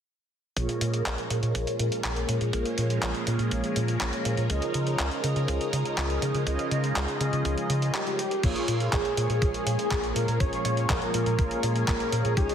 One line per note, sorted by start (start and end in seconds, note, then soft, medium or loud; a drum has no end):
0.56 0.67 A#1 medium
0.56 1.27 A#2 medium
0.56 8.39 F3 medium
0.56 4.46 G#3 medium
0.56 4.46 A#3 medium
0.56 1.27 A#3 medium
0.56 8.39 C#4 medium
0.56 1.27 F4 medium
0.56 1.27 G#4 medium
0.56 8.39 A#4 medium
0.56 1.27 C#5 medium
0.56 kick loud
0.56 closed hi-hat medium
0.69 closed hi-hat soft
0.81 1.02 A#2 medium
0.81 closed hi-hat medium
0.94 closed hi-hat soft
1.06 1.16 A#1 medium
1.06 kick loud
1.06 clap loud
1.06 closed hi-hat medium
1.18 closed hi-hat soft
1.30 1.41 A#2 medium
1.30 2.50 A#2 medium
1.30 2.50 A#3 medium
1.30 2.50 F4 medium
1.30 2.50 G#4 medium
1.30 2.50 C#5 medium
1.30 closed hi-hat medium
1.43 1.53 A#2 loud
1.43 closed hi-hat soft
1.55 1.66 A#1 medium
1.55 kick loud
1.55 closed hi-hat medium
1.67 closed hi-hat soft
1.79 1.90 A#2 medium
1.79 closed hi-hat medium
1.92 closed hi-hat soft
2.04 2.25 A#1 medium
2.04 kick loud
2.04 clap loud
2.04 closed hi-hat medium
2.16 closed hi-hat soft
2.29 2.39 A#2 medium
2.29 closed hi-hat medium
2.41 2.52 A#2 medium
2.41 closed hi-hat soft
2.53 2.64 A#1 medium
2.53 3.24 A#2 medium
2.53 3.24 A#3 medium
2.53 3.24 F4 medium
2.53 3.24 G#4 medium
2.53 3.24 C#5 loud
2.53 kick loud
2.53 closed hi-hat medium
2.65 closed hi-hat soft
2.78 2.99 A#2 medium
2.78 closed hi-hat medium
2.90 closed hi-hat soft
3.02 3.13 A#1 medium
3.02 kick loud
3.02 clap loud
3.02 closed hi-hat medium
3.15 closed hi-hat soft
3.27 4.47 A#2 medium
3.27 3.38 A#2 medium
3.27 4.47 A#3 medium
3.27 4.47 F4 medium
3.27 4.47 G#4 medium
3.27 4.47 C#5 medium
3.27 closed hi-hat medium
3.39 3.50 A#2 medium
3.39 closed hi-hat soft
3.51 3.62 A#1 medium
3.51 kick loud
3.51 closed hi-hat medium
3.64 closed hi-hat soft
3.76 3.97 A#2 medium
3.76 closed hi-hat medium
3.88 closed hi-hat soft
4.01 4.11 A#1 medium
4.01 kick loud
4.01 clap loud
4.01 closed hi-hat medium
4.13 closed hi-hat soft
4.25 4.36 A#2 medium
4.25 closed hi-hat medium
4.37 4.48 A#2 medium
4.37 closed hi-hat soft
4.50 4.61 C#2 medium
4.50 5.21 C#3 medium
4.50 8.40 G#3 medium
4.50 5.21 C#4 medium
4.50 8.40 D#4 medium
4.50 5.21 F4 medium
4.50 5.21 G#4 medium
4.50 5.21 D#5 loud
4.50 kick loud
4.50 closed hi-hat medium
4.62 closed hi-hat soft
4.74 4.96 C#3 medium
4.74 closed hi-hat medium
4.87 closed hi-hat soft
4.99 5.10 C#2 medium
4.99 kick loud
4.99 clap loud
4.99 closed hi-hat medium
5.11 closed hi-hat soft
5.24 6.44 C#3 medium
5.24 5.34 C#3 medium
5.24 6.44 C#4 medium
5.24 6.44 F4 medium
5.24 6.44 G#4 medium
5.24 6.44 D#5 medium
5.24 closed hi-hat medium
5.36 5.47 C#3 medium
5.36 closed hi-hat soft
5.48 5.59 C#2 medium
5.48 kick loud
5.48 closed hi-hat medium
5.61 closed hi-hat soft
5.73 5.84 C#3 medium
5.73 closed hi-hat medium
5.85 closed hi-hat soft
5.97 6.19 C#2 medium
5.97 kick loud
5.97 clap loud
5.97 closed hi-hat medium
6.10 closed hi-hat soft
6.22 6.33 C#3 loud
6.22 closed hi-hat medium
6.35 6.45 C#3 medium
6.35 closed hi-hat soft
6.47 6.57 C#2 medium
6.47 7.18 C#3 medium
6.47 7.18 C#4 medium
6.47 7.18 F4 medium
6.47 7.18 G#4 medium
6.47 7.18 D#5 loud
6.47 kick loud
6.47 closed hi-hat medium
6.59 closed hi-hat soft
6.71 6.92 C#3 medium
6.71 closed hi-hat medium
6.84 closed hi-hat soft
6.96 7.06 C#2 loud
6.96 kick loud
6.96 clap loud
6.96 closed hi-hat medium
7.08 closed hi-hat soft
7.20 7.31 C#3 medium
7.20 8.04 C#3 medium
7.20 8.04 C#4 medium
7.20 8.04 F4 medium
7.20 8.04 G#4 medium
7.20 8.04 D#5 medium
7.20 closed hi-hat medium
7.33 7.43 C#3 loud
7.33 closed hi-hat soft
7.45 7.56 C#2 medium
7.45 kick loud
7.45 closed hi-hat medium
7.58 closed hi-hat soft
7.70 7.91 C#3 medium
7.70 closed hi-hat medium
7.82 closed hi-hat soft
7.94 8.45 G4 medium
7.94 clap loud
7.94 closed hi-hat medium
8.07 8.19 C#3 medium
8.07 8.19 C#4 medium
8.07 8.19 F4 medium
8.07 8.19 G#4 medium
8.07 8.19 D#5 medium
8.07 closed hi-hat soft
8.19 closed hi-hat medium
8.31 closed hi-hat soft
8.43 8.54 A#1 loud
8.43 9.14 A#2 medium
8.43 12.33 F3 medium
8.43 12.55 G#3 medium
8.43 12.33 A#3 medium
8.43 9.14 A#3 medium
8.43 12.55 C#4 medium
8.43 9.14 F4 medium
8.43 8.94 F4 medium
8.43 9.14 G#4 medium
8.43 12.55 G#4 medium
8.43 9.14 C#5 loud
8.43 kick loud
8.43 closed hi-hat medium
8.43 crash medium
8.56 closed hi-hat soft
8.68 8.89 A#2 medium
8.68 closed hi-hat medium
8.80 closed hi-hat soft
8.93 9.03 A#1 medium
8.93 9.41 G#4 medium
8.93 kick loud
8.93 clap loud
8.93 closed hi-hat medium
9.05 closed hi-hat soft
9.17 9.28 A#2 medium
9.17 10.37 A#2 medium
9.17 10.37 A#3 medium
9.17 10.37 F4 medium
9.17 10.37 G#4 medium
9.17 10.37 C#5 medium
9.17 closed hi-hat medium
9.30 9.40 A#2 loud
9.30 closed hi-hat soft
9.42 9.52 A#1 medium
9.42 10.17 G#4 loud
9.42 kick loud
9.42 closed hi-hat medium
9.54 closed hi-hat soft
9.67 9.77 A#2 medium
9.67 closed hi-hat medium
9.79 closed hi-hat soft
9.91 10.12 A#1 medium
9.91 kick loud
9.91 clap loud
9.91 closed hi-hat medium
10.04 closed hi-hat soft
10.16 10.26 A#2 loud
10.16 10.42 A#4 medium
10.16 closed hi-hat medium
10.28 10.39 A#2 medium
10.28 closed hi-hat soft
10.40 10.51 A#1 medium
10.40 11.11 A#2 medium
10.40 11.11 A#3 medium
10.40 11.11 F4 medium
10.40 11.11 G#4 medium
10.40 10.91 C#5 loud
10.40 11.11 C#5 loud
10.40 kick loud
10.40 closed hi-hat medium
10.53 closed hi-hat soft
10.65 10.86 A#2 medium
10.65 closed hi-hat medium
10.77 closed hi-hat soft
10.89 11.00 A#1 loud
10.89 11.87 A#4 loud
10.89 kick loud
10.89 clap loud
10.89 closed hi-hat medium
11.02 closed hi-hat soft
11.14 12.34 A#2 medium
11.14 11.25 A#2 medium
11.14 12.34 A#3 medium
11.14 12.34 F4 medium
11.14 12.34 G#4 medium
11.14 12.34 C#5 medium
11.14 closed hi-hat medium
11.26 11.37 A#2 loud
11.26 closed hi-hat soft
11.39 11.49 A#1 medium
11.39 kick loud
11.39 closed hi-hat medium
11.51 closed hi-hat soft
11.63 11.84 A#2 loud
11.63 closed hi-hat medium
11.76 closed hi-hat soft
11.88 11.98 A#1 medium
11.88 12.33 A#4 loud
11.88 kick loud
11.88 clap loud
11.88 closed hi-hat medium
12.00 closed hi-hat soft
12.12 12.23 A#2 medium
12.12 closed hi-hat medium
12.25 12.35 A#2 medium
12.25 closed hi-hat soft
12.37 12.48 C#2 medium
12.37 12.55 C#3 medium
12.37 12.55 F3 medium
12.37 12.55 G#3 medium
12.37 12.55 D#4 medium
12.37 12.55 F4 medium
12.37 12.55 G#4 loud
12.37 12.55 C#5 loud
12.37 kick loud
12.37 closed hi-hat medium
12.49 closed hi-hat soft